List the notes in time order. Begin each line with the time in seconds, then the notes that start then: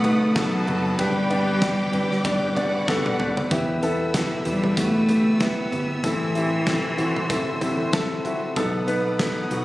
Already playing: B1 B2 A3 B3 D#4 F#4 A4 F#5 B5 D#6
0.04 B3 D#4 F#4 B4, floor tom, ride
0.35 F#3 B3 D#4 F#4 A4 A5, kick, snare, ride
0.66 F#1 B3 D#4 F#4 A4, floor tom, ride
0.98 G1 G2 G3 B3 D4 G4 B4 D5 G5 D6, kick, ride
1.30 B3 D4 G4 D5, ride
1.62 B3 D4 G4 D5, kick, snare, ride
1.93 G1 B3 D4 G4 B4, ride
2.11 snare
2.24 B3 D4 G4 D5, kick, ride
2.56 B3 D4 F#4 G4 D5 F#5, floor tom, ride
2.87 B3 D4 G4 A4, kick, snare
3.06 high tom
3.19 B3 D4 G4 B4, mid tom
3.37 floor tom
3.51 E2 E3 B3 E4 G4 E5 B5 E6, kick, closed hi-hat
3.82 B3 E4 A4, closed hi-hat
4.14 B3 E4 A4, kick, snare, closed hi-hat
4.45 E2 G3 B3 E4 G4, closed hi-hat
4.64 floor tom
4.77 A3 B3 E4 F#4, kick, closed hi-hat
5.08 B3 E4 G4, closed hi-hat, floor tom
5.40 B3 E4 G4, kick, snare, closed hi-hat
5.72 G1 B3 E4 G4, closed hi-hat, floor tom
6.04 A1 A2 E3 C4 E4 A4 C6, kick, closed hi-hat
6.35 C4 E4 G4, closed hi-hat
6.66 C4 E4 A4, kick, snare, closed hi-hat
6.97 A1 C4 E4 F#4, closed hi-hat
7.16 floor tom
7.30 C4 E4 A4, kick, closed hi-hat
7.61 C4 E4 G4, closed hi-hat, floor tom
7.92 C4 E4 A4 A5, kick, snare, closed hi-hat
8.24 C4 E4 F#4 E5, closed hi-hat, floor tom
8.56 B1 B2 B3 D#4 A4 F#5 B5 D#6, kick, closed hi-hat
8.87 B3 D#4 B4, closed hi-hat
9.19 B3 D#4 A4, kick, snare, closed hi-hat
9.51 B1 B3 D#4 F#4, closed hi-hat